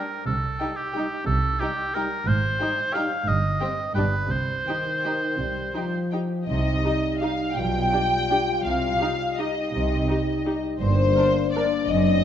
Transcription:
Already playing: A#4
0.26 C2 C3 A4
0.60 G3 D#4 G4 G5
0.77 G4
0.94 G3 D#4 G4 G5
1.26 C2 C3 A4
1.60 G3 D#4 G4 G5
1.94 G3 D#4 G4 A#4 G5
2.27 G#1 G#2 C5
2.60 G3 D#4 G4 G5
2.93 G3 D#4 G4 F5 G5
3.26 G1 G2 D#5
3.60 G3 C4 G4 G5
3.95 G1 G2 G3 D4 G4 B4 G5
4.30 C2 C3 C5
4.65 D#3 D#4 G4 G5
5.04 D#4 G4 G5
5.38 C2 C3 G3
5.74 F3 D#4 G4 G5
6.12 D#4 G4 G5
6.46 C2 C3 G3 D#4 D#5
6.84 D#4 G4
7.20 D#4 G4 F5
7.55 B1 B2 F4 G5
7.92 D4 G4
8.30 D4 G4
8.64 C2 C3 G3 F5
9.01 D#4 G4
9.37 D#4 G4 D#5
9.72 C2 C3
10.09 D#4 G4
10.46 D#4 G4
10.80 G1 G2 A#3 D4 C5
11.17 D4 A#4
11.53 D4 A#4 D5
11.88 F#1 F#2 C4 D#5

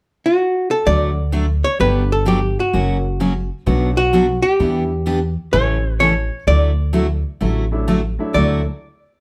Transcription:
0.26 F#4
0.71 A4
0.86 D2 D3 F#3 A3 D4 F#4 D5
1.32 D3 F#3 A3 D4 F#4
1.64 C#5
1.79 G1 D3 F#3 G3 B3 D4 G4 B4
2.12 A4
2.25 D3 F#3 B3 D4 G4
2.60 F#4
2.73 F#1 C#3 F#3 A#3 C#4 F#4
3.20 C#3 F#3 A#3 C#4 F#4
3.66 B1 B2 F#3 B3 D4 F#4
3.97 F#4
4.13 B2 F#3 B3 D4 F#4
4.42 G4
4.60 E2 E3 G3 B3 D4 E4 G4
5.06 E3 B3 D4 G4
5.52 A1 C#3 E3 A3 C#4 E4 A4 C#5
6.00 C#3 E3 A3 C#4 A4 C#5
6.47 D2 D3 F#3 A3 E4 F#4 D5
6.93 D3 F#3 A3 E4 F#4
7.41 A1 D3 F#3 A3 E4 F#4
7.71 F#3 A3 D4 E4
7.88 D3 F#3 A3 E4 F#4
8.19 F#3 A3 D4 E4
8.34 D2 D3 F#3 A3 D4 E4 F#4 D5

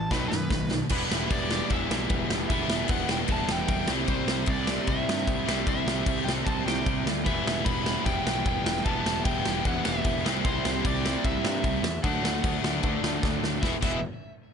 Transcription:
Already playing: A2 E3 A5
0.11 B1 B2 D#3 F#3 B4, kick, snare
0.30 F#2 B2 D#3 B4, snare
0.50 B1 B2 D#3, kick, snare
0.71 B2 D#3, snare
0.89 E1 E3 G3 B3 E4 B4, kick, crash
1.11 E1, snare
1.30 E1 D5, kick, crash
1.51 D5, snare
1.70 E1 E3 G3 B3 E5, kick, crash
1.74 E4
1.91 B1, snare
2.10 E1, kick, crash
2.30 E1, snare
2.49 E1 E3 G3 E5, kick, crash
2.53 B3 E4
2.69 E1, snare
2.88 E1 F#5, kick, crash
3.09 E1 G5, snare
3.28 E1 E3 G3, kick, crash
3.32 B3 E4 A5
3.49 E1 G5, snare
3.68 E1, kick, crash
3.88 C2 C3 G3 C4, snare
3.93 E4
4.08 C2 C5, kick, crash
4.27 C2, snare
4.46 C2 D5, kick, crash
4.67 C3 G3 C4 E4, snare
4.87 C2 E5, kick, crash
5.09 G2, snare
5.27 C2, kick, crash
5.46 C2 C3 G3 C4, snare
5.50 E4
5.67 C2 E5, kick, crash
5.87 C2, snare
6.06 C2, kick, crash
6.24 C2 C4 E4 G5
6.29 C3 G3, snare
6.44 C2 A5, kick, crash
6.65 C2 G5, snare
6.86 C2, kick, crash
7.05 D2, snare
7.25 E1 E3 G3 B3 E4 E5, kick, crash
7.46 E1, snare
7.65 E1 B5, kick, crash
7.86 snare
8.06 E1 E3 G3 G5, kick, crash
8.10 B3 E4
8.26 B1, snare
8.45 E1 G5, kick, crash
8.64 E1, snare
8.86 E1 E3 G3 B3 E4 A5, kick, crash
9.06 E1, snare
9.25 E1 G5, kick, crash
9.46 E1, snare
9.65 E1 E3 G3 B3 F#5, kick, crash
9.70 E4
9.85 E1 E5, snare
10.04 E1, kick, crash
10.25 C2 C3 G3 C4 E4, snare
10.45 C2 C5, kick, crash
10.65 C2, snare
10.85 C2 D5, kick, crash
11.06 C3 G3 C4 E4, snare
11.24 C2 E5, kick, crash
11.44 G2, snare
11.64 C2, kick, crash
11.83 E2, snare
12.03 D2 D3 F#3 A3 F#5, kick, crash
12.08 D4
12.23 D2, snare
12.43 D2, kick, crash
12.64 D2, snare
12.83 D2 D3 F#3 A3, kick, crash
12.88 D4
13.04 D2, snare
13.23 D2, kick, snare
13.42 D2, snare
13.62 E1 E3 G#3 B3 E4 E5, kick, snare
13.82 E1 E3 G#3 B3 E4 E5, kick, crash

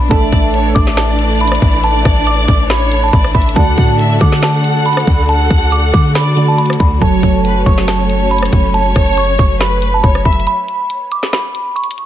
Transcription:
Already playing: B1 D4
0.09 A1 E3 A3 D4 A4 D5 E5 A5, kick, closed hi-hat
0.32 A1, kick, closed hi-hat
0.54 C#5, closed hi-hat
0.75 A1 D5 D6, kick, closed hi-hat
0.87 snare
0.97 A5, snare, closed hi-hat
1.19 closed hi-hat
1.40 B5, closed hi-hat
1.48 closed hi-hat
1.52 cross-stick, closed hi-hat
1.62 A1, kick, closed hi-hat
1.84 D5 A5, closed hi-hat
2.05 A1, kick, cross-stick, closed hi-hat
2.27 D6, closed hi-hat
2.48 A1 D6, kick, closed hi-hat
2.70 C#5 B5, snare, closed hi-hat
2.92 closed hi-hat
3.04 A5
3.13 A1 D5 B5, kick, closed hi-hat
3.24 cross-stick
3.34 A1 E5 B5, kick, closed hi-hat
3.42 closed hi-hat
3.49 closed hi-hat
3.55 D2 D3 A3 F#4 A4 D5 F#5 A5, kick, closed hi-hat
3.78 A2, kick, closed hi-hat
3.99 E5, closed hi-hat
4.21 D3 F#5 D6, kick, closed hi-hat
4.32 snare
4.43 A5, snare, closed hi-hat
4.64 closed hi-hat
4.86 B5, closed hi-hat
4.93 closed hi-hat
4.97 cross-stick, closed hi-hat
5.07 D2, kick, closed hi-hat
5.29 F#5 A5, closed hi-hat
5.50 D2, kick, closed hi-hat
5.72 D6, closed hi-hat
5.93 D3 D6, kick, closed hi-hat
6.15 D5 B5, snare, closed hi-hat
6.36 D3 A3 F#4 D5, closed hi-hat
6.48 A5
6.58 B5, closed hi-hat
6.66 closed hi-hat
6.70 cross-stick, closed hi-hat
6.80 D2 B5, kick, closed hi-hat
7.00 F#1 F#3 A3 C#4 F#4 A4 C#5 A5, kick, closed hi-hat
7.23 F#1, kick, closed hi-hat
7.45 B4, closed hi-hat
7.66 F#1 C#5 C#6, kick, closed hi-hat
7.78 snare
7.88 A5, snare, closed hi-hat
8.10 closed hi-hat
8.31 B5, closed hi-hat
8.38 closed hi-hat
8.43 cross-stick, closed hi-hat
8.53 F#1, kick, closed hi-hat
8.74 C#5 A5, closed hi-hat
8.96 F#1, kick, cross-stick, closed hi-hat
9.17 C#6, closed hi-hat
9.39 F#1 C#6, kick, closed hi-hat
9.60 B4 B5, snare, closed hi-hat
9.82 closed hi-hat
9.94 A5
10.03 F#1 C#5 B5, kick, closed hi-hat
10.15 cross-stick
10.25 F#1 E5 B5, kick, closed hi-hat
10.33 closed hi-hat
10.40 closed hi-hat
10.47 B5, closed hi-hat
10.68 closed hi-hat
10.90 closed hi-hat
11.12 D6, closed hi-hat
11.23 snare
11.33 B5, snare, closed hi-hat
11.55 closed hi-hat
11.76 C#6, closed hi-hat
11.84 closed hi-hat
11.91 closed hi-hat
11.98 closed hi-hat

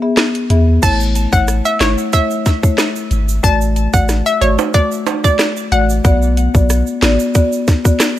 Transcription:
0.02 B3 G#4 E5
0.17 cross-stick, snare, clap, closed hi-hat
0.35 closed hi-hat
0.50 E2 B3 G#4 E5, closed hi-hat
0.82 A1 A3 E4 C#5 A5, kick, closed hi-hat, crash, shaker
1.00 shaker
1.15 closed hi-hat, shaker
1.32 A1 A3 E4 C#5 F#5, kick, shaker
1.48 cross-stick, closed hi-hat, shaker
1.65 E5, shaker
1.80 G#1 A3 E4 C#5, snare, clap, closed hi-hat, shaker
1.98 shaker
2.13 A3 E4 C#5 E5, kick, closed hi-hat, shaker
2.31 shaker
2.46 kick, snare, closed hi-hat, shaker
2.63 A3 E4 C#5, kick, shaker
2.78 cross-stick, snare, clap, closed hi-hat, shaker
2.96 shaker
3.11 G#1, closed hi-hat, shaker
3.29 shaker
3.43 A1 A3 F#4 D5 A5, kick, closed hi-hat, shaker
3.61 shaker
3.76 closed hi-hat, shaker
3.93 A1 A3 F#4 D5 F#5, kick, shaker
4.09 cross-stick, snare, closed hi-hat, shaker
4.26 E5, shaker
4.41 G#1 A3 F#4 C#5 D5, closed hi-hat, shaker
4.59 high timbale, shaker
4.74 A3 F#4 D5, kick, closed hi-hat, shaker
4.92 shaker
5.07 closed hi-hat, high timbale, shaker
5.24 A3 F#4 D5, kick, shaker
5.39 cross-stick, snare, clap, closed hi-hat, shaker
5.57 shaker
5.72 A1 A3 F#4 D5 F#5, closed hi-hat, shaker
5.90 shaker
6.04 B1 B3 F#4 D5, kick, closed hi-hat, shaker
6.22 shaker
6.37 closed hi-hat, shaker
6.54 B1 B3 F#4 D5, kick, shaker
6.70 cross-stick, closed hi-hat, shaker
6.87 shaker
7.02 A1 B3 F#4 D5, snare, clap, closed hi-hat, shaker
7.20 shaker
7.35 B3 F#4 D5, kick, closed hi-hat, shaker
7.52 shaker
7.67 kick, snare, closed hi-hat, shaker
7.85 B3 F#4 D5, kick, shaker
8.00 cross-stick, snare, clap, closed hi-hat, shaker

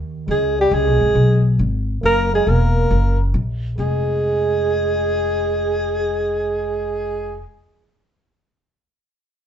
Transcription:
Already playing: D#2
0.28 C#2 G#3 G#4
0.59 G3 G4
0.71 C#2 G#3 G#4
0.87 B1
1.01 G#1
1.15 B1
1.59 G#1
2.03 F#1 A#3 A#4
2.34 G#3 G#4
2.47 E1 A#3 A#4
2.91 F#1
3.34 A#1
3.78 F1 G#3 G#4

